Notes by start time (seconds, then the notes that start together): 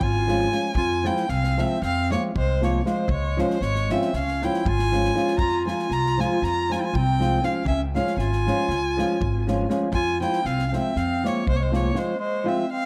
0.00 G#1 F4 G#5, kick
0.27 F3 G#3 C#4 F4, snare
0.51 F3 G#3 C#4 F4, snare
0.75 F2 F4 G#5, kick
1.04 F3 G#3 C4 E4 F4 G5, snare
1.17 snare
1.28 C2 C4 F5, snare
1.44 snare
1.57 F3 G#3 C4 F4 E5, snare
1.82 F2 C4 F5, snare
2.10 F3 G#3 A#3 C4 F4 C#5, snare
2.35 C2 G#3 C5, kick
2.61 F3 G#3 A#3 C4 F4 C#5, snare
2.85 F3 G#3 C4 F4 C5, snare
3.08 C#2 G#3 C#5, kick
3.37 F3 G#3 C#4 F4 C5, snare
3.50 snare
3.61 G#1 G#3 C#5, snare
3.76 snare
3.89 F3 G#3 C4 C#4 F4 E5, snare
4.02 snare
4.13 C#2 C#4 F5, snare
4.28 snare
4.42 F3 G#3 C#4 E4 F4 G5, snare
4.54 snare
4.65 G#1 F4 G#5, kick
4.79 snare
4.92 F3 G#3 C#4 F4, snare
5.05 snare
5.14 F3 G#3 C#4 F4, snare
5.28 snare
5.38 F2 F4 A#5, kick
5.65 F3 G#3 C4 F4 G#5, snare
5.70 F4
5.79 snare
5.90 C2 F4 A#5, snare
6.06 snare
6.17 F3 G#3 C4 F4 G#5, snare
6.21 F4
6.42 F2 F4 A#5, snare
6.70 F3 G#3 C4 F4 G#5, snare
6.74 F4
6.79 E4 G5
6.84 F4 G#5
6.93 C2 C4 G5, kick
7.19 F3 G#3 C4 F4, snare
7.42 F3 G#3 C4 C#4 F4 F5, snare
7.65 C#2 C#4 E5, kick
7.95 F3 G#3 C#4 F4 F5, snare
8.07 snare
8.17 G#1 F4 G#5, snare
8.33 snare
8.47 F3 G#3 C#4 F4, snare
8.68 C#2, snare
8.97 F3 G#3 C#4 F4, snare
9.21 G#1, kick
9.47 F3 G#3 C#4 F4, snare
9.69 F3 G#3 C#4 F4, snare
9.92 F2 F4 G#5, kick
10.20 F3 G#3 C4 E4 F4 G5, snare
10.33 snare
10.44 C2 C4 F5, snare
10.59 snare
10.65 C#4 F5
10.72 F3 G#3 C4 F4 E5, snare
10.96 F2 C4 F5, snare
11.23 F3 G#3 A#3 C4 F4 C#5, snare
11.47 C2 G#3 C5, kick
11.54 A#3 C#5
11.60 G#3 C5
11.72 F3 G#3 A#3 C4 F4, snare
11.76 C#5
11.93 F3 G#3 C4 F4, snare
11.98 C5
12.19 G#3 C5
12.44 F3 G#3 C4 F4
12.48 E5
12.72 C4 F5